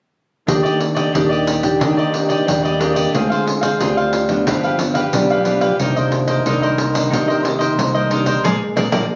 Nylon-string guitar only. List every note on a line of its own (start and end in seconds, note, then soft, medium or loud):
0.48 1.09 A#3 soft
0.48 1.09 D4 soft
0.48 1.10 G4 medium
1.15 1.78 A#2 medium
1.15 1.46 A#3 medium
1.15 1.46 D4 medium
1.15 1.46 G4 medium
1.62 2.08 A#3 medium
1.62 2.08 D4 medium
1.62 2.08 G4 medium
1.80 2.44 D#3 medium
2.13 2.41 A#3 medium
2.13 2.42 D4 medium
2.13 2.42 G4 medium
2.47 3.10 A#2 soft
2.47 2.67 A#3 medium
2.47 2.67 D4 medium
2.47 2.67 G4 medium
2.80 3.08 A#3 medium
2.80 3.08 D4 medium
2.80 3.09 G4 medium
3.14 3.77 D3 medium
3.14 3.57 G#3 medium
3.14 3.57 C4 medium
3.14 3.57 F4 medium
3.80 4.43 D3 medium
3.80 4.12 C4 medium
3.80 4.12 F4 medium
4.29 4.74 F3 medium
4.29 4.74 B3 medium
4.29 4.75 D4 medium
4.48 5.10 G2 medium
4.80 4.99 F3 medium
4.80 4.99 B3 medium
4.80 5.00 D4 medium
5.14 5.77 D3 medium
5.14 5.33 F3 medium
5.14 5.33 B3 medium
5.14 5.33 D4 medium
5.45 5.66 F3 medium
5.45 5.66 B3 medium
5.45 5.66 D4 medium
5.79 6.43 C3 medium
5.79 6.41 D#3 medium
5.79 6.41 A#3 medium
5.79 6.41 D4 medium
6.46 7.09 G2 medium
6.46 6.78 D#3 medium
6.46 6.78 A#3 medium
6.46 6.78 D4 medium
6.94 7.40 D#3 medium
6.94 7.40 A#3 medium
6.94 7.40 D4 medium
7.12 7.75 C3 medium
7.44 8.06 D#3 medium
7.44 8.06 A#3 medium
7.79 8.42 G2 medium
8.11 8.31 D#3 medium
8.11 8.31 A#3 medium
8.11 8.31 D4 medium
8.45 8.56 F3 medium
8.45 8.56 G#3 loud
8.45 8.56 A#3 medium
8.76 8.88 F3 loud
8.76 8.88 G#3 medium
8.76 8.88 A#3 medium
8.92 9.04 F3 loud
8.92 9.04 G#3 loud
8.92 9.04 A#3 loud